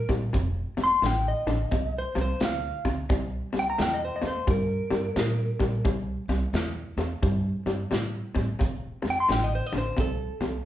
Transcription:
0.09 A#2 C3 G3, kick, snare, closed hi-hat
0.33 F1 F2 C3, kick, closed hi-hat
0.77 F1 F2 C3, snare, closed hi-hat
0.84 C6
1.02 A1 F2 D3, snare, closed hi-hat
1.06 G5
1.28 D#5
1.46 A1 F2 D3, snare, closed hi-hat
1.71 C2 F2 C3, kick, closed hi-hat
1.98 C5
2.15 C2 F2 C3, snare, closed hi-hat
2.21 C5
2.40 D2 F2 C3, snare, closed hi-hat
2.45 F5
2.85 D2 F2 C3, kick, snare, closed hi-hat
3.10 C2 C3 G3, kick, snare, closed hi-hat
3.53 C2 C3 G3, snare, closed hi-hat
3.59 G5
3.70 A#5
3.78 E2 C3 A3 G5, snare, closed hi-hat
3.94 D#5
4.05 C5
4.16 D#5
4.22 E2 C3 A3, snare, closed hi-hat
4.27 C5
4.47 G2 C3 G3 A#4, kick, closed hi-hat
4.91 G2 C3 G3, snare, closed hi-hat
5.16 A#2 C3 G3, snare, closed hi-hat
5.60 A#2 C3 G3, kick, snare, closed hi-hat
5.85 C2 C3 G3, kick, closed hi-hat
6.28 C2 C3 G3, snare, closed hi-hat
6.53 E2 C3 A3, snare, closed hi-hat
6.97 E2 C3 A3, snare, closed hi-hat
7.23 G2 C3 G3, kick, closed hi-hat
7.66 G2 C3 G3, snare, closed hi-hat
7.91 A2 C3 G3, snare, closed hi-hat
8.35 A2 C3 G3, kick, snare, closed hi-hat
8.59 F1 F2 C3, kick, closed hi-hat
9.02 F1 F2 C3, snare, closed hi-hat
9.10 G5
9.20 C6
9.29 A1 F2 D3 G5, snare, closed hi-hat
9.44 D#5
9.55 C5
9.67 D#5
9.72 A1 F2 D3, snare, closed hi-hat
9.78 C5
9.97 C2 F2 C3 A4, kick, closed hi-hat
10.41 C2 F2 C3, snare, closed hi-hat

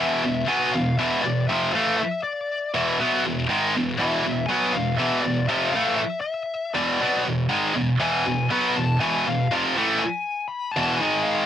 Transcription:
Already playing: E2
0.00 B2 E3 E5
0.24 E2 B2
0.47 B2 F#3 B3 G#5
0.72 E2 B2 F5
0.98 E2 B2 E3 E5
1.22 E2 B2 D5
1.48 F2 C3 F3 E5
1.73 A2 E3 A3 F5
1.98 E5
2.23 D5
2.74 E2 B2 E3 E5
2.99 B2 F#3 B3
3.25 E2 B2
3.49 G#2 D#3 G#3
3.76 E2 B2
3.99 E2 B2 E3 E5
4.24 E2 B2
4.46 B2 F#3 G#5
4.51 B3
4.73 E2 B2 F5
4.97 E2 B2 E3 E5
5.21 E2 B2 D5
5.48 F2 C3 F3 E5
5.72 A2 E3 A3 F5
5.96 E5
6.21 E5
6.74 E2 B2 E3 D5
7.01 B2 F#3 B3
7.25 E2 B2
7.49 G#2 D#3 G#3
7.75 E2 B2
8.00 E2 B2 E3 G#5
8.26 E2 B2
8.50 B2 F#3 B3 B5
8.76 E2 B2 A5
9.00 E2 B2 E3 G#5
9.27 E2 B2 F5
9.51 F2 C3 F3
9.76 A2 E3 A3
9.99 G#5
10.48 B5
10.72 A5
10.76 E2 B2 E3
10.96 G#5
11.01 G#2 D#3 G#3
11.23 F5

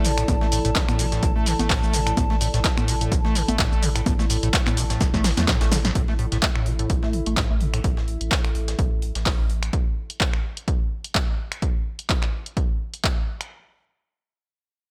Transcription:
Already playing: A1 E3 A3 E4 A4 D5 A5
0.05 B2, closed hi-hat, open hi-hat, shaker
0.18 A2, finger snap, closed hi-hat, shaker
0.28 A1 A2, kick, closed hi-hat, high conga, shaker
0.41 A3, snare
0.52 A2, closed hi-hat, open hi-hat, shaker
0.65 A1 A2, closed hi-hat, shaker
0.75 A3, kick, snare, clap, closed hi-hat, shaker
0.88 A2, finger snap, closed hi-hat, high conga, shaker
0.99 A1 B2, closed hi-hat, open hi-hat, shaker
1.12 A2, snare, closed hi-hat, shaker
1.23 A1 B2, kick, closed hi-hat, shaker
1.36 A3
1.46 D3, closed hi-hat, open hi-hat, shaker
1.59 A1 A3, snare, closed hi-hat, high conga, shaker
1.70 A2, kick, snare, clap, closed hi-hat, open hi-hat, shaker
1.83 A1 A3, shaker
1.93 B2, closed hi-hat, open hi-hat, shaker
2.07 A2, finger snap, closed hi-hat, shaker
2.17 A1 A2, kick, closed hi-hat, high conga, shaker
2.30 A3, snare
2.41 A2, closed hi-hat, open hi-hat, shaker
2.54 A1 A2, snare, closed hi-hat, shaker
2.64 A3, kick, snare, clap, closed hi-hat, shaker
2.78 A2, finger snap, high conga, shaker
2.88 A1 B2, closed hi-hat, open hi-hat, shaker
3.01 A2, closed hi-hat, shaker
3.12 A1 B2, kick, closed hi-hat, shaker
3.25 A3, snare
3.35 D3, closed hi-hat, open hi-hat, shaker
3.48 A1 A3, closed hi-hat, high conga, shaker
3.59 A2, kick, snare, clap, closed hi-hat, shaker
3.72 A1 A3, shaker
3.83 B2, closed hi-hat, open hi-hat, shaker
3.96 A2, finger snap, closed hi-hat, shaker
4.06 A1 A2, kick, closed hi-hat, high conga, shaker
4.19 A3, snare, shaker
4.30 A2, closed hi-hat, open hi-hat, shaker
4.43 A1 A2, closed hi-hat, shaker
4.53 A3, kick, snare, clap, closed hi-hat, shaker
4.66 A2, finger snap, clap, closed hi-hat, high conga, shaker
4.77 A1 B2, closed hi-hat, open hi-hat, shaker
4.90 A2, snare, closed hi-hat, shaker
5.01 A1 B2, kick, snare, closed hi-hat, shaker
5.14 A3, kick, snare, shaker
5.24 D3, snare, closed hi-hat, open hi-hat, shaker
5.37 E2 A3, snare, closed hi-hat, high conga, shaker
5.48 A2, kick, snare, clap, closed hi-hat, shaker
5.61 A1 A3, snare, closed hi-hat, shaker
5.72 B2, snare, closed hi-hat, open hi-hat, shaker
5.85 A2, snare, closed hi-hat, shaker
5.95 A1 A2 E4, kick, closed hi-hat
6.08 A3, snare
6.19 A2, closed hi-hat
6.32 A1 A2, snare, closed hi-hat
6.36 A4 E5
6.42 A3, kick, snare, clap, closed hi-hat
6.56 A2, finger snap
6.66 A1 B2, closed hi-hat
6.79 A2, closed hi-hat
6.90 A1 B2, kick, closed hi-hat
7.03 A3, snare
7.13 D3, closed hi-hat
7.26 A1 A3, closed hi-hat
7.37 A2, kick, snare, clap, closed hi-hat
7.50 A1 A3
7.61 B2, closed hi-hat
7.74 A2, finger snap, closed hi-hat
7.84 A1, kick, closed hi-hat
7.97 snare
8.08 closed hi-hat
8.21 A1, closed hi-hat
8.31 kick, snare, clap, closed hi-hat
8.44 finger snap, closed hi-hat
8.55 A1, closed hi-hat
8.68 snare, closed hi-hat
8.79 A1, kick, closed hi-hat
9.02 closed hi-hat
9.15 A1, snare, closed hi-hat
9.26 kick, snare, clap, closed hi-hat, open hi-hat
9.39 A1
9.50 closed hi-hat
9.63 finger snap, closed hi-hat
9.73 kick, closed hi-hat
10.10 closed hi-hat
10.20 kick, clap, closed hi-hat
10.34 finger snap
10.57 closed hi-hat
10.68 kick, closed hi-hat
11.04 closed hi-hat
11.15 kick, clap, closed hi-hat
11.52 finger snap, closed hi-hat
11.62 kick, closed hi-hat
11.99 closed hi-hat
12.10 kick, clap, closed hi-hat
12.23 finger snap, clap
12.46 closed hi-hat
12.57 kick, closed hi-hat
12.94 closed hi-hat
13.04 kick, clap, closed hi-hat
13.41 finger snap, closed hi-hat

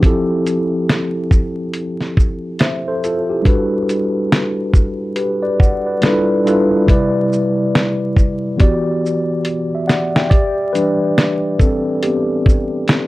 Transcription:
0.02 F3 C4 E4 G4, kick, closed hi-hat
0.06 A4
0.47 closed hi-hat, shaker
0.89 snare, closed hi-hat
1.31 kick, shaker
1.74 closed hi-hat
2.01 snare
2.17 kick, shaker
2.59 C5 E5, snare, closed hi-hat
2.88 A4 C5
3.04 F4 A4, closed hi-hat, shaker
3.29 E4 G4
3.42 G3 D4 F#4 A4, kick, closed hi-hat
3.47 B4
3.89 closed hi-hat, shaker
4.32 snare, closed hi-hat
4.74 kick, shaker
5.16 G4 B4, closed hi-hat
5.42 B4 D5
5.60 D5 F#5, kick, shaker
5.86 B4 D5
6.01 G3 D4 E4 F4 A4, snare, closed hi-hat
6.06 B4
6.44 G3 D4 E4 F4 A4, closed hi-hat, shaker
6.48 B4
6.86 C3 G3 E4 B4, kick, closed hi-hat
6.91 D5
7.33 shaker
7.75 snare, closed hi-hat
8.16 kick, shaker
8.57 E3 B3 F#4 G4, kick, closed hi-hat
8.61 D5
9.06 shaker
9.45 closed hi-hat
9.75 E5
9.87 D5 F#5, snare, closed hi-hat, shaker
10.16 E5 G5, snare
10.30 G4 D5, kick, closed hi-hat
10.73 E3 G3 D4 B4, closed hi-hat, shaker
11.18 snare, closed hi-hat
11.59 C4 A4, kick, shaker
12.03 B3 G4, closed hi-hat
12.46 kick, shaker
12.88 snare, closed hi-hat

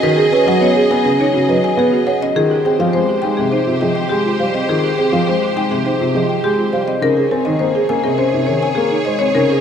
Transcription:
Already playing: G#4 D#5
0.03 D#3 F#4 B4
0.17 G#4
0.32 C#4 B4 G#5
0.46 F#3 F#4 F#5
0.61 B3 C#4 C#5
0.76 G#4
0.90 B3 G#5
1.05 C#3 G#4 B4
1.20 D#4 C#5
1.34 C#3 F#4
1.49 F#3 B4 D#5
1.64 G#5
1.77 B3 G#4 B4
1.92 F#4
2.07 C#5 F#5
2.22 C#4 D#5
2.36 D#3 F4 G4 G#4 C5
2.51 G4
2.65 C4 G#4 G5
2.79 F3 F4 F5
2.93 G#3 C4 C5
3.09 G4
3.22 G#3 D#4 G5
3.37 C3 G4 G#4
3.52 D#4 C5
3.67 C3 F4
3.81 F3 G#4 D#5
3.95 G5
4.09 G#3 G4 G#4
4.25 F4
4.40 G3 C5 F5
4.54 C4 D#5
4.69 D#3 F4 G#4
4.84 G4
4.98 C4 G#4 G5
5.12 F3 F4 F5
5.27 G#3 C4 C5
5.42 G4
5.56 G#3 D#4 G5
5.71 C3 G4 G#4
5.85 D#4 C5
6.00 C3 F4
6.14 F3 G#4 D#5
6.29 G5
6.43 G#3 G4 G#4
6.58 F4
6.73 G3 C5 F5
6.87 C4 D#5
7.01 C#3 D#4 G#4 A#4 C#5
7.17 G#4
7.31 C4 A#4 G#5
7.45 D#3 D#4 D#5
7.59 A#3 C4 C5
7.75 G#4
7.89 A#3 C#4 G#5
8.04 C3 G#4 A#4
8.18 C#4 C5
8.33 C3 D#4
8.47 D#3 A#4 C#5
8.63 G#5
8.75 A#3 G#4 A#4
8.92 D#4
9.05 G#3 C5 D#5
9.19 C4 C#5
9.35 C#3 D#4 A#4
9.50 G#4

